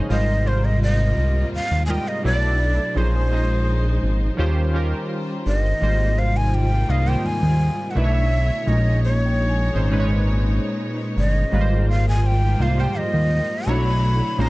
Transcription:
Already playing: A#2 F3 G#3 C#4 D#4 G#4 C5 C#5 D#5 F5
0.09 G#1 G#2 C3 G3 A#3 F4 A#4 C5 D#5
0.44 G#2 G3 F4 A#4 C5
0.65 D#5
0.83 D#5
1.18 C2
1.53 D#2 F5
1.71 D#2
1.86 G#2 G3 F4 A#4 G#5
1.90 D#5 G5
2.08 D#5
2.24 B1 B2 F#3 A3 D4 E4 A4 B4 D5
2.33 D5
2.95 A#1 A#2 F3 G#3 C#4 D#4 G#4 C5
3.31 A#2 F3 C#4 D#4 G#4 D#5
4.03 G#1
4.37 D#2 D#3 G3 C#4 F4 G4 C5
4.73 D#3 C#4 F4 G4 A#4
5.46 G1 D#5
5.81 G#1 G#2 C3 D#3 G3 A#3 F4 C5
6.18 C5 F5
6.37 D#5 G#5
6.54 G5
6.63 F4
6.88 C2 G#2 D#3 G3 A#3 F4 D#5 F5
7.06 G#2 D#3 G3 A#3 F4 C5 G5
7.25 D#2 G#5
7.43 D#2
7.91 B2 F#5
7.95 B1 D3 A3 D4 E4 B4 C#5 E5
8.04 C#5
8.66 A#1 A#2 G#3 C#4 D#4 C#5 D#5
9.04 C#5 D#5
9.26 G5
9.49 G#5
9.73 G#1 A#2 G#3 C#4 D#4 C5
9.90 A#2 G#3 C#4 D#4 B4
10.00 C#5
11.17 G1 D#5
11.51 G#1 G#2 F3 G3 A#3 F4 B4 F5
11.61 C5
11.76 G#4
11.91 F5
12.09 G#5
12.27 G5
12.59 C2 G#2 G3 A#3 F4 C5 F5
12.77 G#2 A#3 F4 G4 C5 G5
12.96 D#2 D#5
13.14 D#2
13.66 B1 B2 D3 F#3 A3 D4 E4 C#5 B5
14.37 A#1 A#2 C#3 G#3 C#4 D#4 C5 A#5

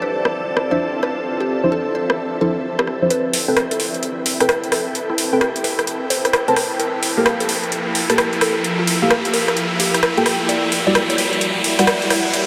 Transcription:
Already playing: C4 F4 G4 A4 D5 A5
0.02 B4
0.25 cross-stick
0.57 cross-stick
0.71 F3 D4 E4 C5 E5
0.81 E5
1.03 B4, cross-stick
1.40 G4
1.64 F3 D4 E4 C5
1.72 A4
1.95 C5
2.10 cross-stick
2.41 F3 D4 E4 A4 C5
2.79 G4, cross-stick
2.87 cross-stick
3.02 F3 D4 E4 C5
3.10 E4 B4 E5, closed hi-hat, riser
3.33 G5, open hi-hat
3.42 B4
3.47 C4 A4 B4 G5
3.57 cross-stick, closed hi-hat
3.71 A4, closed hi-hat
3.80 open hi-hat
3.94 closed hi-hat
4.03 closed hi-hat
4.26 open hi-hat
4.40 C4 A4 B4 G5, cross-stick, closed hi-hat
4.49 cross-stick, closed hi-hat
4.64 closed hi-hat
4.72 A4, cross-stick, open hi-hat
4.95 closed hi-hat
5.09 E4
5.18 open hi-hat
5.33 C4 A4 B4 G5
5.41 G4, cross-stick, closed hi-hat
5.56 closed hi-hat
5.64 B4, open hi-hat
5.79 cross-stick, closed hi-hat
5.87 closed hi-hat
6.10 C5, open hi-hat
6.25 cross-stick, closed hi-hat
6.33 cross-stick, closed hi-hat
6.48 C4 A4 A#4 B4 A5, closed hi-hat
6.56 F3, cross-stick, open hi-hat
6.80 A#4, closed hi-hat
6.88 A#4
7.03 open hi-hat
7.17 A#3 G4 A4 A#4 F5
7.26 cross-stick, closed hi-hat
7.40 A4, closed hi-hat
7.49 open hi-hat
7.63 closed hi-hat
7.72 closed hi-hat
7.95 open hi-hat
8.10 A#3 G4 A4 A#4 A5, cross-stick, closed hi-hat
8.18 cross-stick, closed hi-hat
8.33 closed hi-hat
8.41 A4, cross-stick, open hi-hat
8.64 closed hi-hat
8.79 F4
8.87 open hi-hat
9.02 A#3 G4 A4 F5
9.10 G4, cross-stick, closed hi-hat
9.25 closed hi-hat
9.34 A#4, open hi-hat
9.48 cross-stick, closed hi-hat
9.57 closed hi-hat
9.80 G4, open hi-hat
9.94 cross-stick, closed hi-hat
10.03 cross-stick, closed hi-hat
10.17 A#3 F4 G4 A4 G5, closed hi-hat
10.26 cross-stick, open hi-hat
10.49 E4 D5, closed hi-hat
10.72 open hi-hat
10.87 G3 E4 F#4 D5 F#5
10.91 G4, cross-stick, closed hi-hat
11.10 C#5, closed hi-hat
11.18 open hi-hat
11.33 closed hi-hat
11.41 closed hi-hat
11.64 open hi-hat
11.77 G3 E4 F#4 D5 F#5, cross-stick, closed hi-hat
11.87 cross-stick, closed hi-hat
12.02 closed hi-hat
12.10 C#5, cross-stick, open hi-hat
12.34 closed hi-hat

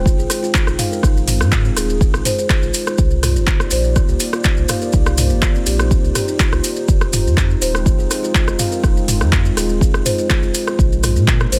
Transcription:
Already playing: D#1 G#3 C4 D#4 C5 G5
0.06 F4, kick, maracas
0.18 G#1 G#4, maracas
0.30 D#4, cross-stick, open hi-hat, maracas
0.43 F4, maracas
0.54 kick, clap, maracas
0.67 G#1, cross-stick, maracas
0.79 F5, mid tom, open hi-hat, maracas
0.92 A#4, maracas
1.03 G#1 D#4 G#4, kick, cross-stick, maracas
1.17 maracas
1.28 mid tom, open hi-hat, maracas
1.41 G#2, cross-stick, maracas
1.52 F4, kick, clap, maracas
1.65 C4, maracas
1.77 D#1 G#4, cross-stick, open hi-hat, maracas
1.90 maracas
2.01 kick, maracas
2.14 G#1, cross-stick, maracas
2.25 C5, mid tom, open hi-hat, maracas
2.39 C5, maracas
2.50 F4, kick, cross-stick, clap, maracas
2.63 G#1 F4, maracas
2.74 open hi-hat, maracas
2.87 cross-stick, maracas
2.98 C2 A#3 D#4 G4 D5, kick, maracas
3.11 maracas
3.23 F4, cross-stick, mid tom, open hi-hat, maracas
3.36 G1, maracas
3.47 kick, clap, maracas
3.60 cross-stick, maracas
3.71 A#1 C5, open hi-hat, maracas
3.84 maracas
3.96 F4, kick, cross-stick, maracas
4.09 C2 G4, maracas
4.20 D#4, open hi-hat, maracas
4.33 F4, cross-stick, maracas
4.44 kick, clap, maracas
4.57 C2, maracas
4.69 F5, cross-stick, mid tom, open hi-hat, maracas
4.82 A#4, maracas
4.92 C2 D#4, kick, maracas
5.06 cross-stick, maracas
5.18 mid tom, open hi-hat, maracas
5.30 G1, maracas
5.42 kick, cross-stick, clap, maracas
5.55 C4, maracas
5.66 A#1 G4, open hi-hat, maracas
5.79 cross-stick, maracas
5.91 kick, maracas
6.04 C2, maracas
6.15 G4, cross-stick, mid tom, open hi-hat, maracas
6.28 D#4, maracas
6.40 F4, kick, clap, maracas
6.52 C2 F4, cross-stick, maracas
6.64 open hi-hat, maracas
6.76 maracas
6.88 F1 G#3 C4 F4, kick, maracas
7.01 cross-stick, maracas
7.13 F4, mid tom, open hi-hat, maracas
7.25 F2, maracas
7.37 kick, cross-stick, clap, maracas
7.50 maracas
7.61 D#1 C5, open hi-hat, maracas
7.75 cross-stick, maracas
7.86 F4, kick, maracas
7.99 F1 G#4, maracas
8.10 D#4, cross-stick, open hi-hat, maracas
8.23 F4, maracas
8.35 kick, clap, maracas
8.47 F1, cross-stick, maracas
8.59 F5, mid tom, open hi-hat, maracas
8.72 A#4, maracas
8.84 F1 D#4, kick, cross-stick, maracas
8.97 maracas
9.08 mid tom, open hi-hat, maracas
9.21 F2, cross-stick, maracas
9.32 F4, kick, clap, maracas
9.45 C4, maracas
9.57 D#1 G#4, cross-stick, open hi-hat, maracas
9.69 maracas
9.81 kick, maracas
9.94 F1, cross-stick, maracas
10.06 C5, mid tom, open hi-hat, maracas
10.18 C5, maracas
10.30 F4, kick, cross-stick, clap, maracas
10.43 F1 F4, maracas
10.54 open hi-hat, maracas
10.67 cross-stick, maracas
10.79 A#1 A#3 D4 A#4, kick, maracas
10.92 maracas
11.03 F4, cross-stick, mid tom, open hi-hat, maracas
11.16 A#2, maracas
11.28 kick, clap, maracas
11.40 cross-stick, maracas
11.52 G#1 C5, open hi-hat, maracas

